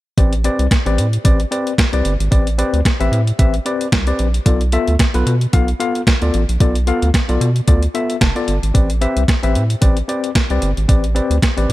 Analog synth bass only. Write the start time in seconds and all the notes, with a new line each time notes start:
0.18 A1
0.59 C2
0.86 A1
0.98 A2
1.25 A1
1.93 C2
2.05 G1
2.20 G#1
2.32 A1
2.73 D2
3.00 A1
3.12 A2
3.39 A1
3.92 C2
4.19 A#1
4.46 B1
4.88 D2
5.15 B1
5.26 B2
5.53 B1
6.22 D2
6.34 A1
6.49 A#1
6.60 B1
7.03 D2
7.29 B1
7.41 B2
7.68 D2
8.21 F1
8.48 G1
8.63 G#1
8.75 A1
9.16 C2
9.43 A1
9.55 A2
9.82 A1
10.50 C2
10.62 G1
10.77 G#1
10.89 A1
11.30 D2
11.57 A1
11.69 A2